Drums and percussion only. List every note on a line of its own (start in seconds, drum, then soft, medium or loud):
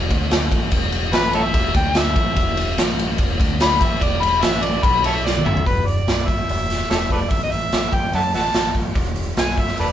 0.10 kick loud
0.10 ride medium
0.31 snare loud
0.31 ride loud
0.52 kick medium
0.52 ride medium
0.71 kick loud
0.71 ride loud
0.92 ride medium
1.13 snare loud
1.13 ride loud
1.33 ride medium
1.54 kick loud
1.54 ride loud
1.74 kick loud
1.74 ride medium
1.95 snare loud
1.95 ride loud
2.16 kick loud
2.16 ride medium
2.36 kick loud
2.36 ride loud
2.57 ride medium
2.78 snare loud
2.78 ride loud
2.99 ride medium
3.18 kick loud
3.18 ride loud
3.40 kick loud
3.40 ride medium
3.60 snare loud
3.60 ride loud
3.81 kick loud
3.81 ride medium
4.01 kick loud
4.01 ride loud
4.23 ride medium
4.42 snare loud
4.42 ride loud
4.63 ride medium
4.83 kick loud
4.83 ride loud
5.04 ride medium
5.27 snare medium
5.37 high tom medium
5.46 mid tom loud
5.57 floor tom loud
5.66 kick loud
5.66 open hi-hat medium
5.88 open hi-hat medium
6.08 snare loud
6.08 open hi-hat medium
6.28 kick medium
6.28 open hi-hat medium
6.49 open hi-hat medium
6.70 snare soft
6.70 open hi-hat medium
6.91 snare loud
6.91 open hi-hat medium
7.10 kick medium
7.10 open hi-hat medium
7.31 kick loud
7.31 open hi-hat medium
7.52 open hi-hat medium
7.72 snare loud
7.72 open hi-hat medium
7.93 kick medium
7.93 open hi-hat medium
8.13 open hi-hat medium
8.34 snare soft
8.34 open hi-hat medium
8.54 snare loud
8.54 open hi-hat medium
8.75 kick medium
8.75 open hi-hat soft
8.95 kick loud
8.95 open hi-hat medium
9.16 open hi-hat medium
9.37 snare loud
9.37 open hi-hat medium
9.57 kick medium
9.57 open hi-hat medium
9.68 snare soft
9.78 open hi-hat medium